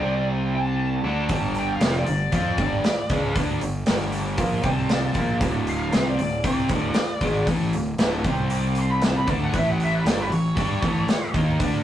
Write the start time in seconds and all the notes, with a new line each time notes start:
Already playing: D5
0.00 C2 C3 G3 C4
0.55 A5
1.04 D2 D3 A3 D4
1.29 G1 G2 D3 G3, kick, open hi-hat
1.55 open hi-hat
1.59 G5
1.73 F5
1.80 F1 F2 C3 F3, snare, open hi-hat
1.97 D5
2.06 G1 G2 D3, open hi-hat
2.31 F2 F3 C4 F4, kick, open hi-hat
2.36 D5
2.58 G1 G2 D3 G3, kick, open hi-hat
2.84 muted overdriven electric guitar stroke, muted fingered electric bass stroke, snare, open hi-hat
3.09 C#2 C#3 G#3 C#4, kick, open hi-hat
3.35 D2 D3 A3 D4, kick, open hi-hat
3.61 G1 G2 D3, open hi-hat
3.86 G1 G2 D3 G3, snare, open hi-hat
4.12 open hi-hat
4.37 A#1 A#2 F3 A#3, kick, open hi-hat
4.62 C2 C3 G3 C4 A5, kick, open hi-hat
4.89 snare, open hi-hat
5.14 A#1 A#2 F3 A#3, kick, open hi-hat
5.40 D1 D2 A2 D3, kick, open hi-hat
5.67 F5, open hi-hat
5.80 F5
5.92 C2 C3 G3 C4, snare, open hi-hat
6.08 D5
6.18 D1 D2 A2, open hi-hat
6.44 C2 C3 G3 C4 D5, kick, open hi-hat
6.69 D1 D2 A2 D3, kick, open hi-hat
6.94 muted fingered electric bass stroke, muted overdriven electric guitar stroke, snare, open hi-hat
7.21 G#1 G#2 D#3 G#3, kick, open hi-hat
7.47 A1 A2 E3 A3, kick, open hi-hat
7.73 D1 D2 A2, open hi-hat
7.98 D1 D2 A2 D3, snare, open hi-hat
8.24 C2 C3 G3 C4, kick, open hi-hat
8.50 D6, open hi-hat
8.75 C6, open hi-hat
8.90 B5
9.02 A5, snare, open hi-hat
9.17 B5
9.27 D2 D3 A3 D4 A5, kick, open hi-hat
9.43 F#5
9.52 A1 A2 E3 A3, kick, open hi-hat
9.57 E5
9.70 F#5
9.80 E5, open hi-hat
9.95 B4
10.04 G1 G2 D3 G3 A4, snare, open hi-hat
10.21 B4
10.29 A1 A2 E3 C#5, open hi-hat
10.55 G2 G3 D4 G4, kick, open hi-hat
10.82 A1 A2 E3 A3, kick, open hi-hat
11.08 muted overdriven electric guitar stroke, muted fingered electric bass stroke, snare, open hi-hat
11.34 D#2 D#3 A#3 D#4, kick, open hi-hat
11.59 D2 D3 A3 D4, kick, open hi-hat